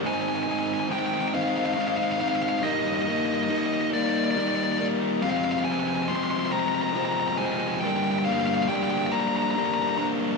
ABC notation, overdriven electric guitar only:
X:1
M:6/8
L:1/8
Q:3/8=46
K:Fdor
V:1 name="Overdriven electric guitar" clef=bass
[A,,E,A,CE] [A,CE] [E,A,CE] [A,CE] [E,A,CE] [A,CE] | [G,,E,G,B,E] [G,B,E] [E,G,B,E] [G,B,E] [E,G,B,E] [G,B,E] | [F,,C,F,A,C] [F,A,C] [C,F,A,C] [F,A,C] [C,F,A,C] [F,A,C] | [G,,D,G,B,D] [G,B,D] [D,G,B,D] [G,B,D] [D,G,B,D] [G,B,D] |]